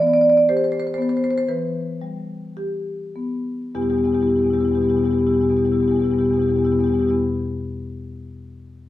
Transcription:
marimba
Already playing: E3
0.00 B3 D5
0.07 D5
0.14 D5
0.21 D5
0.30 D5
0.37 D5
0.49 G4 C5
0.57 C5
0.64 C5
0.72 C5
0.80 C5
0.87 C5
0.94 B3 C5
1.02 C5
1.09 C5
1.17 C5
1.24 C5
1.31 C5
1.38 C5
1.48 E3 B4
2.01 G3
2.57 G4
3.16 B3
3.75 E2 B2 G3 B3 E4 G4
3.81 E2 B2 G3 B3 E4 G4
3.90 E2 B2 G3 B3 E4 G4
3.96 G3 B3 E4 G4
4.01 E2 B2 E4
4.05 B2 G3 B3 G4
4.12 E2 G3 B3 E4 G4
4.18 B2 G3 E4
4.23 E2 B3 G4
4.27 B2 G3 B3 E4 G4
4.33 E2 B2 E4 G4
4.38 G3 B3
4.42 E2 B2 E4 G4
4.46 G3 B3
4.50 E2 B2 G3 B3 E4 G4
4.58 B2 B3 E4 G4
4.62 E2 G3 E4
4.68 E2 B2 G3 B3 G4
4.73 B2 B3 E4 G4
4.77 E2 G3
4.81 B3 E4 G4
4.86 B2 G3 E4
4.90 E2 B3 G4
4.95 B2 G3 E4 G4
4.99 E2 B3
5.03 B2 G3 B3 E4 G4
5.10 E2 B2 G3 B3 E4 G4
5.18 E2 G3 B3 E4 G4
5.23 B2 G3 E4 G4
5.29 E2 B2 B3
5.34 G3 B3 E4 G4
5.40 E2 B2 G3 B3 E4 G4
5.48 E2 B2 G3 B3 E4 G4
5.57 E2 B2 G3 B3 E4 G4
5.65 B2 G3 B3 E4 G4
5.71 E2 G3 B3 E4 G4
5.77 E2 B2 E4 G4
5.81 G3 B3
5.86 B2 E4 G4
5.90 E2 G3 B3
5.94 B2 G3 E4 G4
6.00 E2 B3 G4
6.04 G3 B3 E4
6.10 E2 B2 G3 B3 E4 G4
6.18 E2 B2 G3 B3 E4 G4
6.25 E4 G4
6.29 E2 B2 G3 B3 E4
6.34 B2 G3 B3 G4
6.39 E2 B3 E4 G4
6.46 E2 B2 G3 E4
6.50 B3 G4
6.54 B2 G3 E4
6.58 E2 G3 B3 G4
6.64 B2 B3 E4 G4
6.68 E2 B2 G3 B3 E4
6.74 G3 G4
6.79 E2 B2 B3 E4
6.84 G3 B3 E4 G4
6.90 E2 B2 G3 G4
6.94 B3 E4
6.98 E2 B2 G3 E4 G4
7.03 B2 B3
7.07 E2 G3 B3 E4 G4

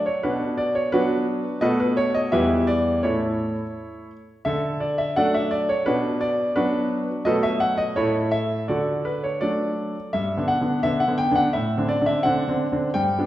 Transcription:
grand piano
0.06 C#5
0.23 B2 D4 F#4 B4
0.58 D5
0.75 C#5
0.92 F#3 B3 D4 F#4 B4
1.61 B2 A3 B3 F#4 A4 B4 D#5
1.80 B4
1.97 C#5
2.14 D#5
2.32 E2 G3 B3 E4 G4 B4 E5
2.67 D5
3.03 A2 A3 E4 A4 C#5
4.45 D3 A4 E5
4.80 D5
4.98 E5
5.16 F#3 A3 D4 A4 D5 F#5
5.34 E5
5.51 D5
5.69 C#5
5.86 B2 D4 F#4 B4
6.21 D5
6.56 F#3 B3 D4 F#4 B4
7.25 B2 F#3 A3 B3 A4 B4 D#5
7.43 E5
7.60 F#5
7.78 D#5
7.96 A2 A3 E4 A4 C#5
8.31 E5
8.68 D3 F#4 A4 D5
9.05 B4
9.24 C#5
9.41 F#3 A3 D4 D5
10.13 G2 E5
10.37 D3 B3 D4
10.48 F#5
10.61 D3 B3 D4
10.83 D3 B3 D4 E5
11.00 F#5
11.08 D3 B3 D4
11.18 G5
11.31 D3 B3 D4
11.35 F#5
11.53 A2 E5
11.77 D3 C4 D4
11.89 D5
12.01 D3 C4 D4
12.06 E5
12.23 D3 C4 D4 F#5
12.48 D3 C4 D4
12.72 D3 C4 D4
12.94 G2 G5
13.19 G3 B3 D4

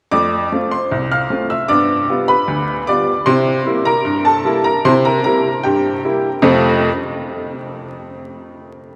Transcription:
upright piano
0.12 F2 A3 D5 D6
0.52 A3 C4 F4
0.71 C5 C6
0.91 C2
1.11 F5 F6
1.30 A3 C4 F4
1.50 E5 E6
1.68 G2 B3 D5 D6
2.09 G3 B3 F4
2.28 B4 B5
2.48 D2
2.87 G3 B3 F4 D5 D6
3.26 C3 E4 C5 C6
3.66 G3 A#3 E4
3.85 A#4 A#5
4.05 G2
4.25 A4 A5
4.44 G3 A#3 E4
4.64 A#4 A#5
4.85 C3 E4 C5 C6
5.05 A#4 A#5
5.24 G3 A#3 E4 A#4 A#5
5.64 G2 G4 G5
6.04 G3 A#3 E4
6.42 F2 C3 A3 C4 F4 A4 F5

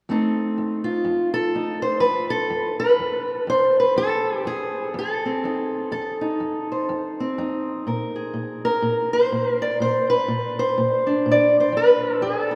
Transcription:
steel-string acoustic guitar
0.09 F2 A3 C4 D#4 A4
0.58 F2
0.84 F4
1.05 F2
1.34 A4
1.55 F2 D#4
1.82 C5
2.00 F2 B4
2.30 A4
2.50 F2
2.80 B4
3.00 F2
3.47 F2 C5
3.80 B4
3.96 F2 A4
4.45 F2 G#4
4.94 F2
4.99 A4
5.26 C4
5.44 F2 D#4
5.92 F2 A4
6.21 D#4
6.40 F2
6.72 C5
6.89 F2
7.20 C4
7.38 F2 D#4
7.87 A#2 A#4
8.16 G#4
8.34 A#2
8.65 A#4
8.82 A#2
9.13 C5
9.32 A#2
9.62 D5
9.80 A#2 C5
10.10 B4
10.28 A#2
10.59 C5
10.78 A#2
11.07 D4
11.26 A#2
11.31 D5
11.60 C5
11.72 F2
11.77 B4
12.21 F2 G#4
12.42 A4
12.51 D#4

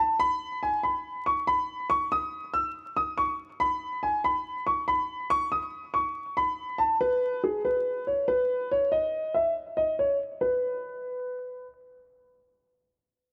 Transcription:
grand piano
Already playing: A5
0.20 B5
0.63 G#5
0.83 B5
1.26 C#6
1.47 B5
1.90 C#6
2.12 D#6
2.54 E6
2.97 D#6
3.18 C#6
3.60 B5
4.03 G#5
4.24 B5
4.67 C#6
4.88 B5
5.30 C#6
5.52 D#6
5.94 C#6
6.37 B5
6.78 A5
7.01 B4
7.44 G#4
7.65 B4
8.07 C#5
8.28 B4
8.71 C#5
8.92 D#5
9.34 E5
9.77 D#5
9.99 C#5
10.41 B4

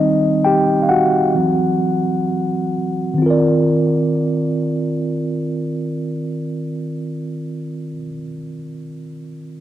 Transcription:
tine electric piano
Already playing: D#3 G3 C4 D#4 D#5
0.45 G4 G5
0.83 F5
0.89 F#4 F#5
1.35 E3 F#3 C4
3.14 D#3
3.18 C4
3.22 F4
3.26 A#4
3.30 D5

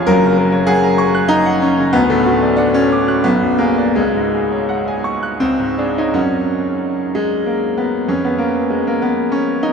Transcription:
grand piano
Already playing: F1 F3 F4 G#4 C#5 G#5 C#6
0.07 F#1 F#2 A#4
0.23 C#3
0.38 A#4
0.52 C#5
0.67 G#4 F#5
0.83 A#5
0.98 C#6
1.15 F#6
1.28 D#4 A#5
1.46 F#5
1.62 C#4 C#5
1.79 C#3
1.93 D2 B3
2.10 A2 A3
2.26 F#4
2.42 D5
2.56 D4 F#5
2.74 C#4 D5
2.92 D6
3.08 F#6
3.24 B1 B3
3.42 F#2
3.58 A#3 G#4
3.78 D5
3.96 C#2 G#3
4.15 G#2
4.34 G#4
4.52 C#5
4.69 F#5
4.88 G#5
5.04 C#6
5.23 F#6
5.40 C#2 C4
5.60 G#2
5.78 D4 G#4
5.98 D#4 C#5
6.14 F#2 C#4 A#4 C#5 F#5
7.15 G#3
7.46 A#3
7.78 B3
8.08 F2 C#4 G#4 B4 G#5
8.25 B3
8.38 A#3
8.70 G#3
8.87 A#3
9.02 B3
9.32 C#4
9.63 D#4

